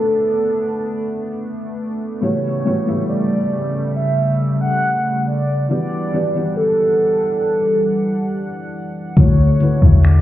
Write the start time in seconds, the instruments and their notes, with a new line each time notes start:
Already playing: felt piano B2 B3 D4 A4 B4 D5, analog synth pad A3 B3 D4, soft synth lead A4
2.21 felt piano A2 E3 B3 F#4 G4 C#5, analog synth pad C#3 G3, soft synth lead C#5
2.64 felt piano A2 E3 B3 F#4 G4 C#5
2.86 felt piano A2 E3 B3 F#4 G4 E5
3.09 soft synth lead D5
3.96 soft synth lead E5
4.61 soft synth lead F#5
5.27 soft synth lead D5
5.69 felt piano E3 B3 F#4 G4 D5, analog synth pad E3 G3 D4 F#5, soft synth lead D5
6.12 felt piano E3 B3 F#4 G4 D5
6.34 felt piano E3 B3 F#4 G4 D5
6.57 soft synth lead A4
9.17 analog synth bass D2, felt piano D3 A3 E4 F#4 C#5, analog synth pad A3 D4 E4, soft synth lead C#5, kick, closed hi-hat
9.60 felt piano D3 A3 E4 F#4 B4, closed hi-hat
9.82 analog synth bass E2, felt piano D3 A3 E4 F#4 E5, kick
10.03 soft synth lead D5, finger snap, closed hi-hat